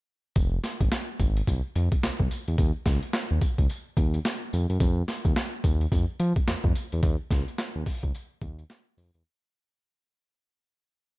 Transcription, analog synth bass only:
0, 0, Header, 1, 2, 480
1, 0, Start_track
1, 0, Tempo, 555556
1, 312, Time_signature, 4, 2, 24, 8
1, 9662, End_track
2, 0, Start_track
2, 0, Title_t, "Analog synth bass"
2, 0, Program_c, 0, 38
2, 314, Note_on_c, 0, 29, 110
2, 504, Note_off_c, 0, 29, 0
2, 698, Note_on_c, 0, 32, 87
2, 773, Note_off_c, 0, 32, 0
2, 1035, Note_on_c, 0, 32, 102
2, 1225, Note_off_c, 0, 32, 0
2, 1276, Note_on_c, 0, 36, 110
2, 1391, Note_off_c, 0, 36, 0
2, 1518, Note_on_c, 0, 41, 97
2, 1632, Note_off_c, 0, 41, 0
2, 1760, Note_on_c, 0, 36, 47
2, 1816, Note_off_c, 0, 36, 0
2, 1898, Note_on_c, 0, 36, 83
2, 1973, Note_off_c, 0, 36, 0
2, 2143, Note_on_c, 0, 40, 93
2, 2215, Note_off_c, 0, 40, 0
2, 2232, Note_on_c, 0, 39, 120
2, 2349, Note_off_c, 0, 39, 0
2, 2472, Note_on_c, 0, 37, 100
2, 2589, Note_off_c, 0, 37, 0
2, 2859, Note_on_c, 0, 39, 88
2, 2933, Note_off_c, 0, 39, 0
2, 3098, Note_on_c, 0, 37, 99
2, 3172, Note_off_c, 0, 37, 0
2, 3432, Note_on_c, 0, 39, 94
2, 3623, Note_off_c, 0, 39, 0
2, 3915, Note_on_c, 0, 41, 97
2, 4031, Note_off_c, 0, 41, 0
2, 4058, Note_on_c, 0, 42, 91
2, 4133, Note_off_c, 0, 42, 0
2, 4152, Note_on_c, 0, 41, 113
2, 4343, Note_off_c, 0, 41, 0
2, 4539, Note_on_c, 0, 39, 82
2, 4613, Note_off_c, 0, 39, 0
2, 4875, Note_on_c, 0, 39, 102
2, 5065, Note_off_c, 0, 39, 0
2, 5114, Note_on_c, 0, 41, 88
2, 5230, Note_off_c, 0, 41, 0
2, 5354, Note_on_c, 0, 53, 101
2, 5470, Note_off_c, 0, 53, 0
2, 5597, Note_on_c, 0, 41, 50
2, 5654, Note_off_c, 0, 41, 0
2, 5739, Note_on_c, 0, 41, 86
2, 5813, Note_off_c, 0, 41, 0
2, 5986, Note_on_c, 0, 40, 83
2, 6057, Note_off_c, 0, 40, 0
2, 6073, Note_on_c, 0, 39, 118
2, 6189, Note_off_c, 0, 39, 0
2, 6315, Note_on_c, 0, 37, 88
2, 6430, Note_off_c, 0, 37, 0
2, 6698, Note_on_c, 0, 39, 96
2, 6773, Note_off_c, 0, 39, 0
2, 6941, Note_on_c, 0, 37, 97
2, 7015, Note_off_c, 0, 37, 0
2, 7272, Note_on_c, 0, 39, 100
2, 7463, Note_off_c, 0, 39, 0
2, 7753, Note_on_c, 0, 41, 95
2, 7869, Note_off_c, 0, 41, 0
2, 7900, Note_on_c, 0, 40, 85
2, 7974, Note_off_c, 0, 40, 0
2, 9662, End_track
0, 0, End_of_file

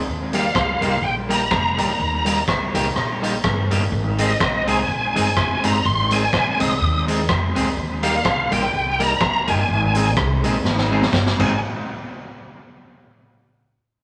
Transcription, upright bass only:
0, 0, Header, 1, 2, 480
1, 0, Start_track
1, 0, Key_signature, -4, "major"
1, 0, Tempo, 480769
1, 71, Time_signature, 4, 2, 24, 8
1, 14010, End_track
2, 0, Start_track
2, 0, Title_t, "Upright bass"
2, 0, Program_c, 0, 32
2, 67, Note_on_c, 0, 39, 86
2, 477, Note_off_c, 0, 39, 0
2, 546, Note_on_c, 0, 37, 92
2, 774, Note_off_c, 0, 37, 0
2, 809, Note_on_c, 0, 36, 94
2, 994, Note_off_c, 0, 36, 0
2, 1019, Note_on_c, 0, 34, 93
2, 1506, Note_on_c, 0, 29, 94
2, 1521, Note_off_c, 0, 34, 0
2, 1735, Note_off_c, 0, 29, 0
2, 1775, Note_on_c, 0, 37, 98
2, 1958, Note_off_c, 0, 37, 0
2, 1992, Note_on_c, 0, 39, 103
2, 2472, Note_off_c, 0, 39, 0
2, 2472, Note_on_c, 0, 37, 93
2, 2699, Note_off_c, 0, 37, 0
2, 2740, Note_on_c, 0, 36, 93
2, 2921, Note_off_c, 0, 36, 0
2, 2957, Note_on_c, 0, 34, 97
2, 3364, Note_off_c, 0, 34, 0
2, 3435, Note_on_c, 0, 43, 103
2, 3661, Note_off_c, 0, 43, 0
2, 3700, Note_on_c, 0, 31, 94
2, 3881, Note_off_c, 0, 31, 0
2, 3912, Note_on_c, 0, 32, 107
2, 4321, Note_off_c, 0, 32, 0
2, 4397, Note_on_c, 0, 34, 88
2, 4657, Note_off_c, 0, 34, 0
2, 4657, Note_on_c, 0, 36, 95
2, 4840, Note_off_c, 0, 36, 0
2, 4876, Note_on_c, 0, 34, 95
2, 5102, Note_off_c, 0, 34, 0
2, 5148, Note_on_c, 0, 31, 90
2, 5355, Note_off_c, 0, 31, 0
2, 5355, Note_on_c, 0, 29, 84
2, 5582, Note_off_c, 0, 29, 0
2, 5626, Note_on_c, 0, 31, 79
2, 5806, Note_off_c, 0, 31, 0
2, 5844, Note_on_c, 0, 32, 104
2, 6249, Note_off_c, 0, 32, 0
2, 6319, Note_on_c, 0, 34, 95
2, 6545, Note_off_c, 0, 34, 0
2, 6590, Note_on_c, 0, 36, 87
2, 6769, Note_off_c, 0, 36, 0
2, 6798, Note_on_c, 0, 39, 106
2, 7276, Note_off_c, 0, 39, 0
2, 7276, Note_on_c, 0, 41, 104
2, 7503, Note_off_c, 0, 41, 0
2, 7549, Note_on_c, 0, 37, 80
2, 7729, Note_off_c, 0, 37, 0
2, 7757, Note_on_c, 0, 39, 102
2, 8166, Note_off_c, 0, 39, 0
2, 8238, Note_on_c, 0, 36, 98
2, 8465, Note_off_c, 0, 36, 0
2, 8503, Note_on_c, 0, 34, 88
2, 8685, Note_off_c, 0, 34, 0
2, 8719, Note_on_c, 0, 36, 96
2, 9127, Note_off_c, 0, 36, 0
2, 9190, Note_on_c, 0, 37, 93
2, 9462, Note_on_c, 0, 31, 94
2, 9477, Note_off_c, 0, 37, 0
2, 9645, Note_off_c, 0, 31, 0
2, 9669, Note_on_c, 0, 32, 102
2, 10149, Note_off_c, 0, 32, 0
2, 10149, Note_on_c, 0, 36, 97
2, 10416, Note_off_c, 0, 36, 0
2, 10416, Note_on_c, 0, 34, 102
2, 10601, Note_off_c, 0, 34, 0
2, 10623, Note_on_c, 0, 32, 100
2, 11037, Note_off_c, 0, 32, 0
2, 11110, Note_on_c, 0, 31, 99
2, 11339, Note_off_c, 0, 31, 0
2, 11378, Note_on_c, 0, 32, 92
2, 11579, Note_off_c, 0, 32, 0
2, 14010, End_track
0, 0, End_of_file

